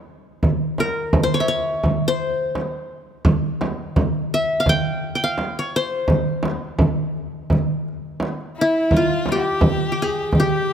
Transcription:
Already playing: C5
0.43 frame drum, darbuka dum
0.78 A#4, darbuka tek, frame drum
1.13 frame drum, darbuka dum
1.23 C5
1.34 C#5
1.40 E5
1.48 C#5, darbuka ka
1.83 frame drum, darbuka dum
2.08 C5
2.21 darbuka ka
2.55 darbuka tek, frame drum
3.25 frame drum, darbuka dum
3.61 darbuka tek, frame drum
3.96 frame drum, darbuka dum
4.34 E5
4.60 F5
4.66 G5, frame drum, darbuka dum
5.02 darbuka ka
5.15 G5
5.24 F5
5.38 darbuka tek, frame drum
5.59 C#5
5.76 C5
6.08 frame drum, darbuka dum
6.43 darbuka tek, frame drum
6.64 darbuka ka
6.79 frame drum, darbuka dum
6.99 darbuka ka
7.17 darbuka ka
7.50 frame drum, darbuka dum
7.88 darbuka ka
8.20 darbuka tek, frame drum
8.41 darbuka ka
8.57 E4, darbuka ka
8.61 E4
8.91 F4, frame drum, darbuka dum
8.96 F4
9.26 G4, darbuka tek, frame drum
9.32 G4
9.61 frame drum, darbuka dum
9.82 darbuka ka
9.92 G4
10.00 G#4, darbuka ka
10.33 G4, frame drum, darbuka dum
10.40 G4

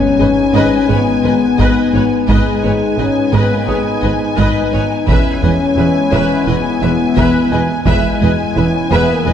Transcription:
Already playing: G#3 B3 C#4 D#4 B4 G#5, impact
0.19 G#1 G#2 C#4 G#4 B4 C#5 D#5
0.54 G#1 G#2 G#3 B4 D#5
0.89 G#1 G#2 B3 G#4 B4 C#5
1.23 G#1 G#2 D#4 B4 D#5
1.58 G#1 G#2 G#3 B4 D#5, taiko
1.93 G#1 G#2 D#4 B4 C#5
2.29 G#1 G#2 G#3 B3 D#4 B4 D#5 G#5, taiko
2.63 G#1 G#2 B3 B4 C#5
2.98 G#1 G#2 C#4 G#4 B4 D#5
3.33 G#1 G#2 G#3 B3 B4 D#5
3.52 A#3
3.68 G#1 G#2 G#3 G#4 B4 C#5 D#6
4.02 G#1 G#2 D#4 B4 D#5
4.37 G#1 G#2 G#3 D#4 B4 D#5, taiko
4.73 G#1 G#2 D#4 B4 C#5
5.07 E1 E2 E3 G#3 B3 C#4 E4 B4 E5 G#5, taiko
5.42 E1 E2 G#3 B4 D#5
5.77 E1 E2 E4 B4 E5
6.11 E1 E2 E3 C#4 B4 C#5 E5
6.47 E1 E2 B3 E4 B4 D#5
6.82 E1 E2 B3 B4 E5
7.16 E1 E2 E3 B4 E5, taiko
7.51 E1 E2 B3 E4 B4 D#5 G#5
7.86 E1 E2 E3 G#3 B3 E4 B4 E5 G#5, taiko
8.21 E1 E2 G#3 B4 D#5
8.56 E1 E2 C#4 E4 B4 E5
8.91 E1 E2 E3 B3 B4 E5
9.10 A#3
9.26 E1 E2 G#3 E4 B4 D#5

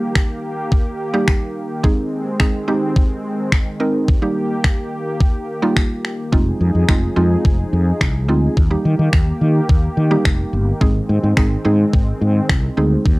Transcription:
Already playing: D#3 G3 A#3 D#4 G4
0.15 finger snap, kick
0.72 kick
1.14 G3 A#3 D#4 G4
1.28 finger snap, kick
1.83 G#3 C4 D#4 G#4, kick
2.40 G#3 C4 D#4 G#4, finger snap, kick
2.68 G#3 C4 D#4 G4
2.96 kick
3.52 finger snap, kick
3.80 G#3 C4 D#4 A#4
4.08 A#3 G4, kick
4.22 G3 A#3 D#4 G4
4.64 finger snap, kick
5.21 kick
5.62 G3 A#3 D#4 F4
5.77 finger snap, kick
6.05 finger snap
6.32 F1 F3 G#3 C4 D#4 F4 G#4, kick
6.61 F2
6.75 F2
6.88 F1 G#3 C4 D#4 F4, finger snap, kick
7.16 F2 G#3 C4 D#4 F4
7.45 F1, kick
7.73 F2
8.01 C2, finger snap, kick
8.28 D2 G#3 C4 D#4 F4
8.57 D#2 D#3 A#3 G4, kick
8.71 G3 A#3 D#4 G4
8.85 D#3
8.99 D#3
9.13 D#2, finger snap, kick
9.41 D#3
9.69 D#2, kick
9.97 D#3
10.11 G3 A#3 D#4 G4
10.25 F1, finger snap, kick
10.53 G1
10.81 G#1 G#3 C4 D#4 G#4, kick
11.09 G#2
11.24 G#2
11.37 G#1 G#3 C4 D#4 G#4, finger snap, kick
11.65 G#2 G#3 C4 D#4 G#4
11.93 G#1, kick
12.21 G#2
12.49 C2, finger snap, kick
12.77 D2 G#3 C4 D#4 G#4
13.05 D#2 A#3 G4, kick

